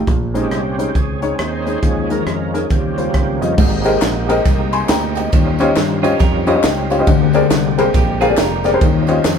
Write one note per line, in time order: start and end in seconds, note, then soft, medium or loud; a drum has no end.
0.07 0.45 A#1 loud
0.07 0.75 A#2 medium
0.07 kick loud
0.07 closed hi-hat medium
0.34 0.43 G#3 medium
0.34 0.61 G#3 medium
0.34 0.95 C4 medium
0.34 0.43 C#4 medium
0.34 0.95 C#4 medium
0.34 0.44 D#4 medium
0.34 0.61 D#4 medium
0.34 0.98 G4 medium
0.34 0.44 C5 medium
0.34 closed hi-hat medium
0.51 0.88 C2 medium
0.51 cross-stick medium
0.51 closed hi-hat medium
0.78 0.87 G#3 medium
0.78 0.87 C#4 medium
0.78 0.88 D#4 medium
0.78 0.88 C5 medium
0.78 closed hi-hat medium
0.95 1.32 C#2 medium
0.95 1.79 C4 medium
0.95 1.79 C#4 medium
0.95 1.39 G#4 medium
0.95 kick loud
0.95 closed hi-hat medium
1.22 1.31 G#3 medium
1.22 1.31 C#4 medium
1.22 1.31 D#4 medium
1.22 1.31 C#5 medium
1.22 closed hi-hat medium
1.39 1.76 D#2 medium
1.39 1.80 D#4 medium
1.39 1.80 G#4 medium
1.39 1.85 C5 medium
1.39 cross-stick loud
1.39 closed hi-hat medium
1.66 1.75 G#3 medium
1.66 1.75 C#4 medium
1.66 1.75 D#4 soft
1.66 1.75 C5 medium
1.66 cross-stick soft
1.66 closed hi-hat soft
1.82 2.20 D#2 loud
1.82 2.50 D#3 medium
1.82 2.66 F3 medium
1.82 2.66 G#3 soft
1.82 2.10 C#4 medium
1.82 2.11 G#4 loud
1.82 kick loud
1.82 closed hi-hat medium
2.10 2.19 G#3 medium
2.10 2.19 C#4 medium
2.10 2.67 C#4 medium
2.10 2.19 D#4 medium
2.10 2.51 A#4 medium
2.10 2.19 A#4 medium
2.10 closed hi-hat medium
2.26 2.64 F2 medium
2.26 cross-stick medium
2.26 closed hi-hat medium
2.53 2.63 G#3 medium
2.53 2.63 C#4 medium
2.53 2.63 D#4 medium
2.53 2.71 G#4 medium
2.53 2.63 A#4 medium
2.53 closed hi-hat medium
2.70 3.08 D#2 medium
2.70 3.54 C#3 soft
2.70 3.37 D#3 medium
2.70 3.55 F3 soft
2.70 3.55 G3 soft
2.70 3.55 A#3 soft
2.70 3.55 C4 medium
2.70 3.55 C#4 soft
2.70 3.38 G4 medium
2.70 kick loud
2.70 cross-stick soft
2.70 closed hi-hat medium
2.97 3.06 G3 medium
2.97 3.06 C#4 medium
2.97 3.07 F4 medium
2.97 3.07 C5 medium
2.97 closed hi-hat medium
3.14 3.38 C#2 medium
3.14 kick medium
3.14 cross-stick loud
3.14 closed hi-hat medium
3.41 3.55 F2 medium
3.41 3.50 G3 medium
3.41 3.50 C#4 medium
3.41 3.50 F4 medium
3.41 3.51 D#5 medium
3.41 closed hi-hat medium
3.58 3.95 G#1 loud
3.58 4.25 G#2 medium
3.58 5.31 G#3 medium
3.58 5.31 A#3 medium
3.58 7.04 C4 medium
3.58 7.04 D#4 medium
3.58 5.31 G4 medium
3.58 kick loud
3.58 crash loud
3.58 tambourine medium
3.84 3.94 C4 medium
3.84 3.94 G4 medium
3.84 3.94 G#4 medium
3.84 3.94 A#4 medium
3.84 3.94 D#5 medium
3.84 ride bell medium
3.84 tambourine medium
4.02 4.39 A#1 medium
4.02 snare loud
4.02 clap loud
4.02 ride bell medium
4.02 tambourine loud
4.29 4.38 C4 medium
4.29 4.38 G4 medium
4.29 4.38 G#4 medium
4.29 4.38 A#4 medium
4.29 4.38 D#5 loud
4.29 ride bell medium
4.29 tambourine medium
4.45 4.83 C2 medium
4.45 kick loud
4.45 snare soft
4.45 ride bell medium
4.45 tambourine medium
4.73 4.89 G#5 medium
4.73 4.88 C6 medium
4.73 ride bell medium
4.73 tambourine medium
4.89 5.26 D2 medium
4.89 5.15 G5 medium
4.89 5.15 A#5 medium
4.89 snare loud
4.89 clap loud
4.89 ride bell medium
4.89 tambourine loud
5.15 5.58 D#5 medium
5.15 5.58 G5 medium
5.15 ride bell medium
5.15 tambourine medium
5.32 5.70 D#2 loud
5.32 6.00 D#3 medium
5.32 7.06 G3 medium
5.32 7.06 C#4 medium
5.32 7.06 F4 medium
5.32 kick loud
5.32 ride bell medium
5.32 tambourine medium
5.59 5.69 C#4 loud
5.59 5.69 F4 medium
5.59 5.69 G4 medium
5.59 5.69 C5 medium
5.59 5.69 D#5 loud
5.59 ride bell medium
5.59 tambourine medium
5.76 6.14 G2 medium
5.76 snare loud
5.76 clap loud
5.76 ride bell medium
5.76 tambourine loud
6.03 6.12 C#4 loud
6.03 6.19 C#4 medium
6.03 6.12 F4 medium
6.03 6.19 F4 medium
6.03 6.12 G4 medium
6.03 6.12 C5 medium
6.03 6.12 D#5 medium
6.03 ride bell medium
6.03 tambourine medium
6.19 6.57 F2 medium
6.19 6.46 G4 medium
6.19 6.46 A#4 medium
6.19 kick loud
6.19 snare soft
6.19 ride bell medium
6.19 tambourine medium
6.47 6.51 C#4 loud
6.47 7.05 D#4 medium
6.47 6.51 F4 medium
6.47 6.52 G4 medium
6.47 7.04 G4 medium
6.47 6.52 C5 medium
6.47 6.52 D#5 loud
6.47 ride bell soft
6.47 tambourine medium
6.55 6.64 C#4 medium
6.55 6.65 F4 medium
6.55 6.65 D#5 medium
6.63 7.01 C#2 medium
6.63 snare loud
6.63 clap loud
6.63 ride bell medium
6.63 tambourine loud
6.90 6.95 C#4 medium
6.90 6.95 F4 medium
6.90 6.95 G4 medium
6.90 6.95 C5 medium
6.90 6.95 F5 medium
6.90 ride bell medium
6.90 tambourine medium
6.99 7.07 C#4 medium
6.99 7.07 F4 medium
6.99 7.07 G4 medium
6.99 7.08 C5 medium
6.99 7.08 D#5 medium
7.07 7.44 D2 loud
7.07 8.80 D3 medium
7.07 7.74 D3 medium
7.07 8.80 G#3 medium
7.07 8.80 A#3 medium
7.07 9.39 C4 medium
7.07 8.80 G4 medium
7.07 kick loud
7.07 ride bell medium
7.07 tambourine medium
7.33 7.43 C4 loud
7.33 7.43 G4 medium
7.33 7.43 G#4 medium
7.33 7.43 A#4 medium
7.33 7.43 D5 loud
7.33 ride bell medium
7.33 tambourine medium
7.51 7.88 C2 medium
7.51 snare loud
7.51 clap loud
7.51 ride bell medium
7.51 tambourine loud
7.78 7.87 C4 medium
7.78 7.87 G4 medium
7.78 7.87 G#4 medium
7.78 7.87 A#4 medium
7.78 7.87 C5 loud
7.78 ride bell medium
7.78 tambourine medium
7.94 8.31 A#1 loud
7.94 8.20 G4 medium
7.94 kick loud
7.94 snare soft
7.94 ride bell medium
7.94 tambourine medium
8.21 8.25 C4 medium
8.21 8.37 F4 medium
8.21 8.25 G4 medium
8.21 8.37 G#4 loud
8.21 8.26 G#4 medium
8.21 8.26 A#4 medium
8.21 8.26 F5 loud
8.21 ride bell medium
8.21 tambourine medium
8.29 8.39 C4 medium
8.29 8.39 G4 medium
8.29 8.39 G#4 medium
8.29 8.39 A#4 medium
8.29 8.39 D5 medium
8.37 8.75 F1 loud
8.37 8.80 G4 medium
8.37 8.79 A#4 medium
8.37 snare loud
8.37 clap loud
8.37 ride bell medium
8.37 tambourine loud
8.64 8.69 C4 medium
8.64 8.69 G4 medium
8.64 8.69 G#4 medium
8.64 8.69 A#4 medium
8.64 8.69 D5 medium
8.64 snare soft
8.64 ride bell medium
8.64 tambourine medium
8.73 8.81 C4 medium
8.73 8.82 G4 medium
8.73 8.82 G#4 medium
8.73 8.82 A#4 medium
8.73 8.82 C5 loud
8.81 9.18 D#2 loud
8.81 9.39 D#3 medium
8.81 9.39 G3 medium
8.81 9.39 C#4 medium
8.81 9.39 D#4 medium
8.81 9.39 F4 medium
8.81 kick loud
8.81 ride bell medium
8.81 tambourine medium
9.07 9.17 C#4 medium
9.07 9.17 F4 medium
9.07 9.17 G4 medium
9.07 9.17 C5 medium
9.07 9.17 D#5 medium
9.07 ride bell medium
9.07 tambourine medium
9.25 9.39 F2 medium
9.25 snare loud
9.25 clap loud
9.25 ride bell medium
9.25 tambourine loud